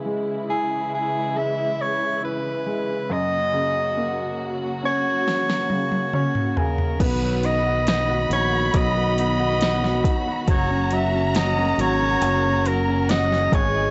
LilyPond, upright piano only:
\new Staff \with { instrumentName = "Upright piano" } { \time 4/4 \key b \major \tempo 4 = 69 <cis gis>8 e'4 gis4 e'8 gis8 fis,8 | cis8 ais4 cis'4 cis8 <cis' cis''>8 <cis gis''>8 | b16 fis16 dis'16 fis'16 dis'16 fis'16 dis'16 fis'16 fis16 fis'16 dis'16 fis'16 dis'16 fis'16 dis'16 fis'16 | fis16 cis'16 fis16 cis'16 fis16 cis'16 fis16 cis'16 fis16 cis'16 fis16 cis'16 fis16 cis'16 gis16 dis'16 | }